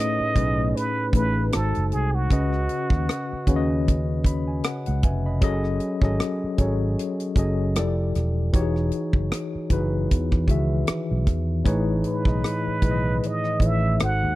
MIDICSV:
0, 0, Header, 1, 6, 480
1, 0, Start_track
1, 0, Tempo, 779221
1, 1422, Time_signature, 4, 2, 24, 8
1, 8841, End_track
2, 0, Start_track
2, 0, Title_t, "Muted trumpet"
2, 0, Program_c, 0, 59
2, 0, Note_on_c, 0, 75, 93
2, 469, Note_on_c, 0, 71, 86
2, 478, Note_off_c, 0, 75, 0
2, 705, Note_off_c, 0, 71, 0
2, 712, Note_on_c, 0, 71, 87
2, 930, Note_off_c, 0, 71, 0
2, 947, Note_on_c, 0, 69, 77
2, 1187, Note_on_c, 0, 68, 79
2, 1196, Note_off_c, 0, 69, 0
2, 1323, Note_on_c, 0, 66, 73
2, 1332, Note_off_c, 0, 68, 0
2, 2279, Note_off_c, 0, 66, 0
2, 7438, Note_on_c, 0, 71, 76
2, 8173, Note_on_c, 0, 75, 76
2, 8182, Note_off_c, 0, 71, 0
2, 8416, Note_on_c, 0, 76, 81
2, 8425, Note_off_c, 0, 75, 0
2, 8639, Note_off_c, 0, 76, 0
2, 8647, Note_on_c, 0, 78, 90
2, 8841, Note_off_c, 0, 78, 0
2, 8841, End_track
3, 0, Start_track
3, 0, Title_t, "Tine electric piano"
3, 0, Program_c, 1, 4
3, 0, Control_c, 1, 64, 127
3, 0, Note_on_c, 1, 45, 62
3, 0, Note_on_c, 1, 57, 54
3, 0, Note_on_c, 1, 61, 50
3, 0, Note_on_c, 1, 63, 57
3, 0, Note_on_c, 1, 68, 53
3, 0, Note_on_c, 1, 71, 101
3, 0, Note_on_c, 1, 73, 65
3, 195, Note_off_c, 1, 45, 0
3, 197, Note_off_c, 1, 57, 0
3, 199, Note_off_c, 1, 61, 0
3, 201, Note_off_c, 1, 63, 0
3, 203, Note_off_c, 1, 68, 0
3, 205, Note_off_c, 1, 73, 0
3, 214, Note_on_c, 1, 45, 64
3, 219, Note_on_c, 1, 57, 58
3, 222, Note_on_c, 1, 61, 62
3, 226, Note_on_c, 1, 63, 54
3, 230, Note_on_c, 1, 68, 62
3, 232, Note_off_c, 1, 71, 0
3, 232, Note_on_c, 1, 71, 73
3, 666, Note_off_c, 1, 45, 0
3, 669, Note_off_c, 1, 57, 0
3, 670, Note_off_c, 1, 61, 0
3, 672, Note_off_c, 1, 63, 0
3, 674, Note_off_c, 1, 68, 0
3, 676, Note_off_c, 1, 71, 0
3, 699, Note_on_c, 1, 45, 59
3, 701, Note_on_c, 1, 57, 55
3, 706, Note_on_c, 1, 61, 52
3, 708, Note_on_c, 1, 63, 54
3, 712, Note_on_c, 1, 68, 50
3, 714, Note_on_c, 1, 71, 62
3, 933, Note_off_c, 1, 63, 0
3, 935, Note_on_c, 1, 56, 68
3, 940, Note_off_c, 1, 45, 0
3, 941, Note_off_c, 1, 57, 0
3, 941, Note_on_c, 1, 63, 57
3, 944, Note_off_c, 1, 61, 0
3, 946, Note_on_c, 1, 66, 59
3, 947, Note_off_c, 1, 68, 0
3, 948, Note_off_c, 1, 71, 0
3, 948, Control_c, 1, 64, 0
3, 949, Note_on_c, 1, 69, 59
3, 954, Note_on_c, 1, 72, 72
3, 1067, Control_c, 1, 64, 127
3, 1387, Note_off_c, 1, 56, 0
3, 1390, Note_off_c, 1, 63, 0
3, 1392, Note_off_c, 1, 66, 0
3, 1394, Note_off_c, 1, 69, 0
3, 1396, Note_off_c, 1, 72, 0
3, 1417, Note_on_c, 1, 49, 82
3, 1419, Note_on_c, 1, 61, 73
3, 1425, Note_on_c, 1, 66, 71
3, 1429, Note_on_c, 1, 71, 79
3, 1430, Control_c, 1, 64, 0
3, 1434, Note_on_c, 1, 75, 88
3, 1540, Control_c, 1, 64, 127
3, 2092, Note_off_c, 1, 49, 0
3, 2093, Note_off_c, 1, 61, 0
3, 2096, Note_off_c, 1, 66, 0
3, 2098, Note_off_c, 1, 71, 0
3, 2101, Note_off_c, 1, 75, 0
3, 2136, Note_on_c, 1, 49, 79
3, 2141, Note_on_c, 1, 61, 74
3, 2144, Note_on_c, 1, 66, 72
3, 2149, Note_on_c, 1, 71, 69
3, 2153, Note_on_c, 1, 73, 70
3, 2192, Note_off_c, 1, 73, 0
3, 2194, Note_on_c, 1, 75, 86
3, 2587, Note_off_c, 1, 49, 0
3, 2590, Note_off_c, 1, 61, 0
3, 2592, Note_off_c, 1, 66, 0
3, 2594, Note_off_c, 1, 71, 0
3, 2616, Note_off_c, 1, 75, 0
3, 2626, Note_on_c, 1, 83, 67
3, 2748, Note_off_c, 1, 83, 0
3, 2758, Note_on_c, 1, 80, 54
3, 2856, Note_off_c, 1, 80, 0
3, 2867, Note_on_c, 1, 78, 58
3, 2993, Note_off_c, 1, 78, 0
3, 3001, Note_on_c, 1, 78, 60
3, 3099, Note_off_c, 1, 78, 0
3, 3105, Note_on_c, 1, 80, 63
3, 3107, Note_on_c, 1, 76, 55
3, 3109, Note_on_c, 1, 71, 47
3, 3230, Note_off_c, 1, 80, 0
3, 3232, Note_off_c, 1, 71, 0
3, 3240, Note_on_c, 1, 83, 58
3, 3244, Note_on_c, 1, 75, 51
3, 3327, Note_off_c, 1, 76, 0
3, 3333, Note_on_c, 1, 54, 95
3, 3338, Note_on_c, 1, 61, 87
3, 3342, Note_on_c, 1, 68, 91
3, 3344, Note_off_c, 1, 75, 0
3, 3348, Note_on_c, 1, 69, 87
3, 3350, Control_c, 1, 64, 0
3, 3351, Note_on_c, 1, 75, 110
3, 3462, Control_c, 1, 64, 127
3, 3466, Note_off_c, 1, 83, 0
3, 3681, Note_off_c, 1, 54, 0
3, 3684, Note_off_c, 1, 61, 0
3, 3686, Note_off_c, 1, 68, 0
3, 3688, Note_off_c, 1, 69, 0
3, 3690, Note_off_c, 1, 75, 0
3, 3707, Note_on_c, 1, 54, 74
3, 3711, Note_on_c, 1, 61, 67
3, 3717, Note_on_c, 1, 68, 63
3, 3722, Note_on_c, 1, 69, 69
3, 3725, Note_on_c, 1, 75, 76
3, 4034, Note_off_c, 1, 54, 0
3, 4036, Note_off_c, 1, 61, 0
3, 4039, Note_off_c, 1, 68, 0
3, 4042, Note_off_c, 1, 69, 0
3, 4043, Note_off_c, 1, 75, 0
3, 4054, Note_on_c, 1, 54, 75
3, 4058, Note_on_c, 1, 61, 66
3, 4062, Note_on_c, 1, 68, 68
3, 4066, Note_on_c, 1, 69, 70
3, 4072, Note_on_c, 1, 73, 80
3, 4506, Note_off_c, 1, 54, 0
3, 4508, Note_off_c, 1, 61, 0
3, 4510, Note_off_c, 1, 68, 0
3, 4512, Note_off_c, 1, 69, 0
3, 4515, Note_off_c, 1, 73, 0
3, 4535, Note_on_c, 1, 54, 70
3, 4538, Note_on_c, 1, 61, 61
3, 4545, Note_on_c, 1, 68, 68
3, 4547, Note_on_c, 1, 69, 62
3, 4553, Note_on_c, 1, 75, 73
3, 4778, Note_off_c, 1, 54, 0
3, 4778, Note_on_c, 1, 53, 72
3, 4780, Note_off_c, 1, 61, 0
3, 4783, Note_off_c, 1, 68, 0
3, 4783, Note_off_c, 1, 69, 0
3, 4783, Note_on_c, 1, 64, 64
3, 4785, Note_on_c, 1, 67, 69
3, 4787, Note_off_c, 1, 75, 0
3, 4789, Control_c, 1, 64, 0
3, 4790, Note_on_c, 1, 69, 75
3, 4795, Note_on_c, 1, 74, 85
3, 4881, Control_c, 1, 64, 127
3, 5228, Note_off_c, 1, 53, 0
3, 5231, Note_off_c, 1, 64, 0
3, 5232, Note_off_c, 1, 67, 0
3, 5234, Note_off_c, 1, 69, 0
3, 5237, Note_off_c, 1, 74, 0
3, 5254, Note_on_c, 1, 52, 87
3, 5258, Note_on_c, 1, 63, 90
3, 5261, Note_on_c, 1, 66, 81
3, 5266, Note_on_c, 1, 67, 70
3, 5269, Control_c, 1, 64, 0
3, 5270, Note_on_c, 1, 73, 103
3, 5306, Note_on_c, 1, 68, 90
3, 5308, Note_off_c, 1, 67, 0
3, 5366, Control_c, 1, 64, 127
3, 5931, Note_off_c, 1, 52, 0
3, 5933, Note_off_c, 1, 63, 0
3, 5934, Note_off_c, 1, 66, 0
3, 5939, Note_off_c, 1, 73, 0
3, 5957, Note_off_c, 1, 68, 0
3, 5975, Note_on_c, 1, 52, 73
3, 5978, Note_on_c, 1, 63, 64
3, 5984, Note_on_c, 1, 66, 72
3, 5989, Note_on_c, 1, 68, 67
3, 5993, Note_on_c, 1, 71, 90
3, 6427, Note_off_c, 1, 52, 0
3, 6429, Note_off_c, 1, 63, 0
3, 6431, Note_off_c, 1, 66, 0
3, 6434, Note_off_c, 1, 68, 0
3, 6436, Note_off_c, 1, 71, 0
3, 6454, Note_on_c, 1, 52, 74
3, 6458, Note_on_c, 1, 51, 69
3, 6462, Note_on_c, 1, 66, 65
3, 6466, Note_on_c, 1, 68, 67
3, 6472, Note_on_c, 1, 76, 79
3, 7131, Note_off_c, 1, 52, 0
3, 7133, Note_off_c, 1, 51, 0
3, 7135, Note_off_c, 1, 66, 0
3, 7137, Note_off_c, 1, 68, 0
3, 7140, Note_off_c, 1, 76, 0
3, 7172, Note_on_c, 1, 45, 98
3, 7176, Note_on_c, 1, 52, 79
3, 7181, Note_on_c, 1, 63, 92
3, 7182, Note_on_c, 1, 68, 87
3, 7186, Note_on_c, 1, 71, 83
3, 7190, Control_c, 1, 64, 0
3, 7191, Note_on_c, 1, 73, 98
3, 7309, Control_c, 1, 64, 127
3, 7520, Note_off_c, 1, 45, 0
3, 7523, Note_off_c, 1, 52, 0
3, 7525, Note_off_c, 1, 63, 0
3, 7526, Note_off_c, 1, 68, 0
3, 7528, Note_off_c, 1, 71, 0
3, 7530, Note_off_c, 1, 73, 0
3, 7549, Note_on_c, 1, 45, 61
3, 7552, Note_on_c, 1, 52, 54
3, 7557, Note_on_c, 1, 63, 52
3, 7559, Note_on_c, 1, 68, 57
3, 7562, Note_on_c, 1, 71, 54
3, 7567, Note_on_c, 1, 75, 61
3, 7875, Note_off_c, 1, 45, 0
3, 7877, Note_off_c, 1, 52, 0
3, 7879, Note_off_c, 1, 63, 0
3, 7880, Note_off_c, 1, 68, 0
3, 7882, Note_off_c, 1, 71, 0
3, 7884, Note_off_c, 1, 75, 0
3, 7897, Note_on_c, 1, 45, 66
3, 7900, Note_on_c, 1, 52, 57
3, 7901, Note_on_c, 1, 51, 58
3, 7905, Note_on_c, 1, 68, 59
3, 7910, Note_on_c, 1, 71, 61
3, 7913, Note_on_c, 1, 75, 54
3, 7946, Note_off_c, 1, 75, 0
3, 7953, Note_on_c, 1, 75, 70
3, 8348, Note_off_c, 1, 45, 0
3, 8349, Note_off_c, 1, 52, 0
3, 8350, Note_off_c, 1, 51, 0
3, 8352, Note_off_c, 1, 68, 0
3, 8354, Note_off_c, 1, 71, 0
3, 8376, Note_off_c, 1, 75, 0
3, 8376, Note_on_c, 1, 45, 61
3, 8380, Note_on_c, 1, 52, 48
3, 8382, Note_on_c, 1, 51, 54
3, 8386, Note_on_c, 1, 68, 51
3, 8390, Note_on_c, 1, 71, 50
3, 8393, Note_on_c, 1, 73, 61
3, 8619, Note_off_c, 1, 45, 0
3, 8619, Note_on_c, 1, 56, 67
3, 8621, Note_off_c, 1, 52, 0
3, 8622, Note_off_c, 1, 51, 0
3, 8624, Note_off_c, 1, 68, 0
3, 8624, Note_on_c, 1, 63, 59
3, 8626, Note_off_c, 1, 71, 0
3, 8627, Note_off_c, 1, 73, 0
3, 8628, Note_on_c, 1, 66, 62
3, 8630, Control_c, 1, 64, 0
3, 8631, Note_on_c, 1, 69, 61
3, 8637, Note_on_c, 1, 72, 78
3, 8745, Control_c, 1, 64, 127
3, 8841, Note_off_c, 1, 56, 0
3, 8841, Note_off_c, 1, 63, 0
3, 8841, Note_off_c, 1, 66, 0
3, 8841, Note_off_c, 1, 69, 0
3, 8841, Note_off_c, 1, 72, 0
3, 8841, End_track
4, 0, Start_track
4, 0, Title_t, "Fingered electric bass"
4, 0, Program_c, 2, 33
4, 227, Note_on_c, 2, 35, 77
4, 444, Note_off_c, 2, 35, 0
4, 701, Note_on_c, 2, 33, 71
4, 920, Note_off_c, 2, 33, 0
4, 956, Note_on_c, 2, 32, 82
4, 1071, Note_off_c, 2, 32, 0
4, 1092, Note_on_c, 2, 30, 68
4, 1182, Note_off_c, 2, 30, 0
4, 1197, Note_on_c, 2, 36, 74
4, 1409, Note_off_c, 2, 36, 0
4, 1425, Note_on_c, 2, 37, 82
4, 1643, Note_off_c, 2, 37, 0
4, 1794, Note_on_c, 2, 39, 73
4, 1892, Note_off_c, 2, 39, 0
4, 2142, Note_on_c, 2, 39, 65
4, 2837, Note_off_c, 2, 39, 0
4, 3007, Note_on_c, 2, 37, 84
4, 3099, Note_off_c, 2, 37, 0
4, 3107, Note_on_c, 2, 29, 78
4, 3343, Note_off_c, 2, 29, 0
4, 3343, Note_on_c, 2, 30, 84
4, 3561, Note_off_c, 2, 30, 0
4, 3712, Note_on_c, 2, 32, 69
4, 3810, Note_off_c, 2, 32, 0
4, 4062, Note_on_c, 2, 32, 73
4, 4281, Note_off_c, 2, 32, 0
4, 4538, Note_on_c, 2, 30, 72
4, 4788, Note_off_c, 2, 30, 0
4, 4788, Note_on_c, 2, 29, 82
4, 5004, Note_off_c, 2, 29, 0
4, 5027, Note_on_c, 2, 28, 82
4, 5244, Note_off_c, 2, 28, 0
4, 5264, Note_on_c, 2, 28, 86
4, 5482, Note_off_c, 2, 28, 0
4, 5630, Note_on_c, 2, 30, 62
4, 5730, Note_off_c, 2, 30, 0
4, 5981, Note_on_c, 2, 30, 82
4, 6200, Note_off_c, 2, 30, 0
4, 6235, Note_on_c, 2, 40, 86
4, 6448, Note_off_c, 2, 40, 0
4, 6460, Note_on_c, 2, 37, 71
4, 6680, Note_off_c, 2, 37, 0
4, 6846, Note_on_c, 2, 35, 81
4, 6948, Note_off_c, 2, 35, 0
4, 6948, Note_on_c, 2, 40, 73
4, 7164, Note_off_c, 2, 40, 0
4, 7186, Note_on_c, 2, 33, 89
4, 7403, Note_off_c, 2, 33, 0
4, 7551, Note_on_c, 2, 35, 71
4, 7650, Note_off_c, 2, 35, 0
4, 7903, Note_on_c, 2, 35, 72
4, 8121, Note_off_c, 2, 35, 0
4, 8382, Note_on_c, 2, 33, 79
4, 8601, Note_off_c, 2, 33, 0
4, 8632, Note_on_c, 2, 32, 85
4, 8767, Note_on_c, 2, 39, 76
4, 8776, Note_off_c, 2, 32, 0
4, 8841, Note_off_c, 2, 39, 0
4, 8841, End_track
5, 0, Start_track
5, 0, Title_t, "Muted fingered electric bass strokes"
5, 124, Note_on_c, 9, 29, 43
5, 185, Note_off_c, 9, 29, 0
5, 2052, Note_on_c, 9, 29, 43
5, 2113, Note_off_c, 9, 29, 0
5, 3967, Note_on_c, 9, 29, 44
5, 4028, Note_off_c, 9, 29, 0
5, 5885, Note_on_c, 9, 29, 41
5, 5947, Note_off_c, 9, 29, 0
5, 6711, Note_on_c, 9, 29, 39
5, 6773, Note_off_c, 9, 29, 0
5, 7806, Note_on_c, 9, 29, 43
5, 7867, Note_off_c, 9, 29, 0
5, 8841, End_track
6, 0, Start_track
6, 0, Title_t, "Drums"
6, 0, Note_on_c, 9, 42, 78
6, 60, Note_off_c, 9, 42, 0
6, 220, Note_on_c, 9, 36, 78
6, 222, Note_on_c, 9, 42, 70
6, 281, Note_off_c, 9, 36, 0
6, 284, Note_off_c, 9, 42, 0
6, 475, Note_on_c, 9, 42, 71
6, 537, Note_off_c, 9, 42, 0
6, 696, Note_on_c, 9, 36, 84
6, 706, Note_on_c, 9, 42, 53
6, 758, Note_off_c, 9, 36, 0
6, 767, Note_off_c, 9, 42, 0
6, 938, Note_on_c, 9, 42, 78
6, 944, Note_on_c, 9, 37, 101
6, 1000, Note_off_c, 9, 42, 0
6, 1006, Note_off_c, 9, 37, 0
6, 1076, Note_on_c, 9, 42, 41
6, 1137, Note_off_c, 9, 42, 0
6, 1181, Note_on_c, 9, 42, 51
6, 1243, Note_off_c, 9, 42, 0
6, 1420, Note_on_c, 9, 36, 96
6, 1424, Note_on_c, 9, 42, 81
6, 1481, Note_off_c, 9, 36, 0
6, 1486, Note_off_c, 9, 42, 0
6, 1557, Note_on_c, 9, 37, 29
6, 1619, Note_off_c, 9, 37, 0
6, 1657, Note_on_c, 9, 42, 51
6, 1718, Note_off_c, 9, 42, 0
6, 1788, Note_on_c, 9, 36, 87
6, 1800, Note_on_c, 9, 37, 34
6, 1849, Note_off_c, 9, 36, 0
6, 1861, Note_off_c, 9, 37, 0
6, 1905, Note_on_c, 9, 37, 93
6, 1914, Note_on_c, 9, 42, 79
6, 1966, Note_off_c, 9, 37, 0
6, 1975, Note_off_c, 9, 42, 0
6, 2137, Note_on_c, 9, 36, 75
6, 2139, Note_on_c, 9, 42, 67
6, 2199, Note_off_c, 9, 36, 0
6, 2200, Note_off_c, 9, 42, 0
6, 2390, Note_on_c, 9, 42, 64
6, 2391, Note_on_c, 9, 36, 77
6, 2452, Note_off_c, 9, 42, 0
6, 2453, Note_off_c, 9, 36, 0
6, 2615, Note_on_c, 9, 36, 75
6, 2623, Note_on_c, 9, 42, 60
6, 2676, Note_off_c, 9, 36, 0
6, 2685, Note_off_c, 9, 42, 0
6, 2856, Note_on_c, 9, 42, 67
6, 2862, Note_on_c, 9, 37, 92
6, 2917, Note_off_c, 9, 42, 0
6, 2923, Note_off_c, 9, 37, 0
6, 2993, Note_on_c, 9, 42, 43
6, 3054, Note_off_c, 9, 42, 0
6, 3097, Note_on_c, 9, 42, 53
6, 3101, Note_on_c, 9, 36, 81
6, 3158, Note_off_c, 9, 42, 0
6, 3162, Note_off_c, 9, 36, 0
6, 3337, Note_on_c, 9, 36, 107
6, 3338, Note_on_c, 9, 42, 81
6, 3399, Note_off_c, 9, 36, 0
6, 3399, Note_off_c, 9, 42, 0
6, 3475, Note_on_c, 9, 37, 27
6, 3537, Note_off_c, 9, 37, 0
6, 3573, Note_on_c, 9, 42, 58
6, 3634, Note_off_c, 9, 42, 0
6, 3706, Note_on_c, 9, 36, 95
6, 3715, Note_on_c, 9, 37, 34
6, 3767, Note_off_c, 9, 36, 0
6, 3776, Note_off_c, 9, 37, 0
6, 3820, Note_on_c, 9, 37, 100
6, 3829, Note_on_c, 9, 42, 75
6, 3882, Note_off_c, 9, 37, 0
6, 3891, Note_off_c, 9, 42, 0
6, 4054, Note_on_c, 9, 42, 68
6, 4056, Note_on_c, 9, 36, 81
6, 4116, Note_off_c, 9, 42, 0
6, 4117, Note_off_c, 9, 36, 0
6, 4306, Note_on_c, 9, 42, 75
6, 4368, Note_off_c, 9, 42, 0
6, 4433, Note_on_c, 9, 42, 49
6, 4495, Note_off_c, 9, 42, 0
6, 4532, Note_on_c, 9, 36, 80
6, 4538, Note_on_c, 9, 42, 58
6, 4594, Note_off_c, 9, 36, 0
6, 4599, Note_off_c, 9, 42, 0
6, 4777, Note_on_c, 9, 42, 80
6, 4783, Note_on_c, 9, 37, 98
6, 4838, Note_off_c, 9, 42, 0
6, 4844, Note_off_c, 9, 37, 0
6, 5021, Note_on_c, 9, 42, 50
6, 5027, Note_on_c, 9, 37, 32
6, 5082, Note_off_c, 9, 42, 0
6, 5088, Note_off_c, 9, 37, 0
6, 5258, Note_on_c, 9, 36, 94
6, 5262, Note_on_c, 9, 42, 77
6, 5320, Note_off_c, 9, 36, 0
6, 5324, Note_off_c, 9, 42, 0
6, 5397, Note_on_c, 9, 37, 28
6, 5459, Note_off_c, 9, 37, 0
6, 5492, Note_on_c, 9, 42, 54
6, 5553, Note_off_c, 9, 42, 0
6, 5626, Note_on_c, 9, 36, 91
6, 5687, Note_off_c, 9, 36, 0
6, 5740, Note_on_c, 9, 37, 98
6, 5749, Note_on_c, 9, 42, 83
6, 5802, Note_off_c, 9, 37, 0
6, 5811, Note_off_c, 9, 42, 0
6, 5974, Note_on_c, 9, 42, 68
6, 5976, Note_on_c, 9, 36, 80
6, 6036, Note_off_c, 9, 42, 0
6, 6038, Note_off_c, 9, 36, 0
6, 6227, Note_on_c, 9, 42, 70
6, 6230, Note_on_c, 9, 36, 77
6, 6289, Note_off_c, 9, 42, 0
6, 6292, Note_off_c, 9, 36, 0
6, 6355, Note_on_c, 9, 37, 34
6, 6357, Note_on_c, 9, 36, 81
6, 6417, Note_off_c, 9, 37, 0
6, 6419, Note_off_c, 9, 36, 0
6, 6454, Note_on_c, 9, 36, 79
6, 6462, Note_on_c, 9, 42, 54
6, 6515, Note_off_c, 9, 36, 0
6, 6523, Note_off_c, 9, 42, 0
6, 6696, Note_on_c, 9, 42, 76
6, 6702, Note_on_c, 9, 37, 95
6, 6757, Note_off_c, 9, 42, 0
6, 6763, Note_off_c, 9, 37, 0
6, 6940, Note_on_c, 9, 42, 49
6, 6942, Note_on_c, 9, 36, 81
6, 6946, Note_on_c, 9, 37, 32
6, 7002, Note_off_c, 9, 42, 0
6, 7003, Note_off_c, 9, 36, 0
6, 7007, Note_off_c, 9, 37, 0
6, 7179, Note_on_c, 9, 36, 92
6, 7183, Note_on_c, 9, 42, 76
6, 7241, Note_off_c, 9, 36, 0
6, 7245, Note_off_c, 9, 42, 0
6, 7416, Note_on_c, 9, 42, 58
6, 7477, Note_off_c, 9, 42, 0
6, 7548, Note_on_c, 9, 36, 91
6, 7560, Note_on_c, 9, 37, 36
6, 7609, Note_off_c, 9, 36, 0
6, 7622, Note_off_c, 9, 37, 0
6, 7665, Note_on_c, 9, 37, 91
6, 7674, Note_on_c, 9, 42, 76
6, 7727, Note_off_c, 9, 37, 0
6, 7736, Note_off_c, 9, 42, 0
6, 7898, Note_on_c, 9, 36, 81
6, 7898, Note_on_c, 9, 42, 72
6, 7959, Note_off_c, 9, 36, 0
6, 7960, Note_off_c, 9, 42, 0
6, 8152, Note_on_c, 9, 42, 66
6, 8214, Note_off_c, 9, 42, 0
6, 8281, Note_on_c, 9, 37, 34
6, 8342, Note_off_c, 9, 37, 0
6, 8377, Note_on_c, 9, 36, 77
6, 8388, Note_on_c, 9, 42, 58
6, 8438, Note_off_c, 9, 36, 0
6, 8449, Note_off_c, 9, 42, 0
6, 8621, Note_on_c, 9, 42, 75
6, 8627, Note_on_c, 9, 37, 97
6, 8683, Note_off_c, 9, 42, 0
6, 8689, Note_off_c, 9, 37, 0
6, 8841, End_track
0, 0, End_of_file